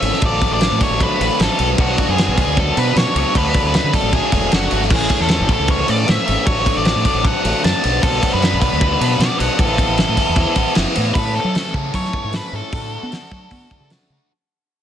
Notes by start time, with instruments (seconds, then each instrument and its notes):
Already playing: lead electric guitar E5
0.01 fingered electric bass G#1, overdriven electric guitar E3 A3 C#4, ride
0.13 snare
0.21 fingered electric bass A1, overdriven electric guitar F#3 A3 D4, kick, ride
0.26 lead electric guitar D5
0.41 overdriven electric guitar F#3 A3 D4, kick, ride
0.51 fingered electric bass A1, lead electric guitar D5
0.60 overdriven electric guitar F#3 A3 D4, snare, ride
0.72 fingered electric bass A2
0.81 overdriven electric guitar F#3 A3 D4, lead electric guitar C#5, kick, snare, ride
0.91 fingered electric bass A1
1.00 overdriven electric guitar F#3 A3 D4, lead electric guitar B4, kick, ride
1.19 fingered electric bass A1, overdriven electric guitar F#3 A3 D4, ride
1.39 fingered electric bass A1, overdriven electric guitar F#3 A3 D4, lead electric guitar A4, snare, ride
1.59 fingered electric bass B1, overdriven electric guitar F#3 B3 D4, ride
1.78 fingered electric bass B1, overdriven electric guitar F#3 B3 D4, lead electric guitar F#4, kick, ride
1.98 overdriven electric guitar F#3 B3 D4, kick, ride
2.08 fingered electric bass F#2, lead electric guitar G#4
2.18 overdriven electric guitar F#3 B3 D4, snare, ride
2.28 fingered electric bass B1
2.37 overdriven electric guitar F#3 B3 D4, lead electric guitar G#4, kick, ride
2.47 fingered electric bass D2
2.57 overdriven electric guitar F#3 B3 D4, lead electric guitar A4, kick, ride
2.77 fingered electric bass B2, overdriven electric guitar F#3 B3 D4, lead electric guitar B4, ride
2.96 fingered electric bass B2, overdriven electric guitar F#3 B3 D4, lead electric guitar C#5, snare, ride
3.15 fingered electric bass C#2, overdriven electric guitar F#3 B3 D4, lead electric guitar C#5, ride
3.34 fingered electric bass D2, overdriven electric guitar F#3 A3 D4, lead electric guitar B4, kick, ride
3.54 overdriven electric guitar F#3 A3 D4, kick, ride
3.64 fingered electric bass D2, lead electric guitar B4
3.74 overdriven electric guitar F#3 A3 D4, snare, ride
3.84 fingered electric bass D3
3.93 overdriven electric guitar F#3 A3 D4, lead electric guitar A4, kick, snare, ride
4.03 fingered electric bass A1
4.13 overdriven electric guitar F#3 A3 D4, lead electric guitar G#4, kick, ride
4.32 fingered electric bass E1, overdriven electric guitar F#3 A3 D4, kick, ride
4.52 fingered electric bass F#1, overdriven electric guitar F#3 A3 D4, lead electric guitar F#4, snare, ride
4.71 fingered electric bass G#1, overdriven electric guitar F#3 A3 D4, ride
4.82 snare
4.90 fingered electric bass A1, overdriven electric guitar E3 A3 C#4, kick, crash
4.96 lead electric guitar G#4
5.10 overdriven electric guitar E3 A3 C#4, kick, ride
5.20 fingered electric bass E2, lead electric guitar A4
5.28 overdriven electric guitar E3 A3 C#4, snare, ride
5.40 fingered electric bass A1
5.49 overdriven electric guitar E3 A3 C#4, lead electric guitar A4, kick, ride
5.59 fingered electric bass C#2
5.68 overdriven electric guitar E3 A3 C#4, lead electric guitar C#5, kick, ride
5.87 fingered electric bass A2, overdriven electric guitar E3 A3 C#4, lead electric guitar D5, ride
6.07 fingered electric bass A2, overdriven electric guitar E3 A3 C#4, lead electric guitar E5, snare, ride
6.25 fingered electric bass G#1, overdriven electric guitar E3 A3 C#4, ride
6.46 fingered electric bass A1, overdriven electric guitar F#3 A3 D4, lead electric guitar C#5, kick, ride
6.65 overdriven electric guitar F#3 A3 D4, kick, ride
6.77 fingered electric bass A1, lead electric guitar D5
6.85 overdriven electric guitar F#3 A3 D4, snare, ride
6.96 fingered electric bass A2
7.05 overdriven electric guitar F#3 A3 D4, lead electric guitar D5, kick, ride
7.14 fingered electric bass A1
7.24 overdriven electric guitar F#3 A3 D4, lead electric guitar F#5, kick, ride
7.44 fingered electric bass A1, overdriven electric guitar F#3 A3 D4, ride
7.64 fingered electric bass F#2, overdriven electric guitar F#3 A3 D4, lead electric guitar A5, snare, ride
7.83 fingered electric bass B1, overdriven electric guitar F#3 B3 D4, ride
8.02 fingered electric bass B1, overdriven electric guitar F#3 B3 D4, lead electric guitar A4, kick, ride
8.23 overdriven electric guitar F#3 B3 D4, kick, ride
8.33 fingered electric bass F#2, lead electric guitar B4
8.42 overdriven electric guitar F#3 B3 D4, snare, ride
8.53 fingered electric bass B1
8.61 overdriven electric guitar F#3 B3 D4, lead electric guitar B4, kick, ride
8.73 fingered electric bass D2
8.80 overdriven electric guitar F#3 B3 D4, kick, ride
9.00 fingered electric bass B2, overdriven electric guitar F#3 B3 D4, ride
9.19 fingered electric bass B2, overdriven electric guitar F#3 B3 D4, lead electric guitar D5, snare, ride
9.38 fingered electric bass B1, overdriven electric guitar F#3 B3 D4, lead electric guitar F#5, ride
9.59 fingered electric bass A1, overdriven electric guitar E3 B3 E4, lead electric guitar A4, kick, ride
9.77 overdriven electric guitar E3 B3 E4, kick, ride
9.88 fingered electric bass A1
9.98 overdriven electric guitar E3 B3 E4, snare, ride
10.09 fingered electric bass A2
10.16 overdriven electric guitar E3 B3 E4, kick, ride
10.29 fingered electric bass E2
10.36 overdriven electric guitar E3 B3 E4, kick, ride
10.56 fingered electric bass A1, overdriven electric guitar E3 B3 E4, kick, ride
10.75 fingered electric bass F#1, overdriven electric guitar E3 B3 E4, snare, ride
10.95 fingered electric bass A2, overdriven electric guitar E3 B3 E4, ride
11.14 fingered electric bass A2, overdriven electric guitar E3 A3 C#4 A4, lead electric guitar B4, kick, open hi-hat
11.36 lead electric guitar A4
11.44 fingered electric bass F#3
11.55 overdriven electric guitar E3 A3 C#4 A4, snare, open hi-hat
11.74 fingered electric bass C#3, overdriven electric guitar E3 A3 C#4 A4, kick
11.94 overdriven electric guitar E3 A3 C#4 A4, fingered electric bass F#3, lead electric guitar C#5, kick, open hi-hat
12.05 snare
12.13 kick
12.24 fingered electric bass G#2
12.33 overdriven electric guitar E3 A3 C#4 A4, lead electric guitar B4, snare, open hi-hat
12.52 fingered electric bass G#2, overdriven electric guitar E3 A3 C#4 A4, lead electric guitar A4
12.73 fingered electric bass A2, overdriven electric guitar A3 D4 F#4, kick, open hi-hat
13.03 fingered electric bass B3
13.12 overdriven electric guitar A3 D4 F#4, snare, open hi-hat
13.31 fingered electric bass F#3, overdriven electric guitar A3 D4 F#4, kick
13.51 overdriven electric guitar A3 D4 F#4, fingered electric bass B3, kick, open hi-hat
13.71 kick
13.80 fingered electric bass C#3
13.90 overdriven electric guitar A3 D4 F#4, snare, open hi-hat
14.10 fingered electric bass C#3, overdriven electric guitar A3 D4 F#4